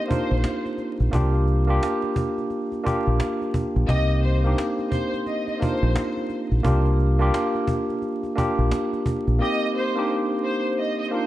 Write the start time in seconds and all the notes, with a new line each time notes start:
Already playing: A#3 C4 D4 D#4 G4
0.08 A#3 D4 D#4 F4 C5, cajon bass
0.31 A#1, cajon slap
0.44 cajon slap
0.66 cajon slap
0.78 cajon slap
1.00 A#1, cajon slap
1.11 C2 A#3 D4 F4 G4, cajon bass
1.34 cajon slap
1.48 cajon slap
1.67 A#3 D4 F4 G4, cajon slap
1.83 cajon slap
2.03 cajon slap
2.16 cajon bass
2.38 cajon slap
2.50 cajon slap
2.72 cajon slap
2.83 A#3 D4 F4 G4, cajon bass
3.07 A#1, cajon slap
3.20 cajon slap
3.42 cajon slap
3.54 cajon bass
3.76 A#1, cajon slap
3.87 C2 A#3 C4 D#4 G4 D#5, cajon bass
4.10 cajon slap
4.23 C5, cajon slap
4.44 A#3 D4 D#4 G4, cajon slap
4.58 cajon slap
4.79 cajon slap
4.92 C5, cajon bass
5.14 cajon slap
5.26 D#5, cajon slap
5.48 D#5, cajon slap
5.60 A#3 D4 D#4 F4 C5, cajon bass
5.83 A#1, cajon slap
5.96 cajon slap
6.17 cajon slap
6.30 cajon slap
6.51 A#1, cajon slap
6.63 C2 A#3 D4 F4 G4, cajon bass
6.85 cajon slap
6.99 cajon slap
7.19 A#3 D4 F4 G4, cajon slap
7.34 cajon slap
7.55 cajon slap
7.68 cajon bass
7.89 cajon slap
8.02 cajon slap
8.23 cajon slap
8.35 A#3 D4 F4 G4, cajon bass
8.58 A#1, cajon slap
8.71 cajon slap
8.93 cajon slap
9.06 cajon bass
9.27 A#1, cajon slap
9.39 A#3 C4 D#4 G4 D#5
9.76 C5
9.96 A#3 D4 D#4 G4
10.44 C5
10.78 D#5
10.99 D#5
11.11 A#3 D4 D#4 F4 C5